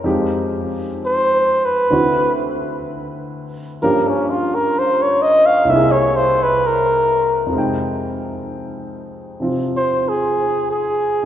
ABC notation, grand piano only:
X:1
M:4/4
L:1/8
Q:"Swing" 1/4=64
K:Fm
V:1 name="Grand piano"
[F,,F,A,EG]4 [=D,,=D,C=E^F]4 | [G,,F,B,DG]4 [C,,C,B,=EA]4 | [F,,C,A,Eg]4 [C,F,CF]4 |]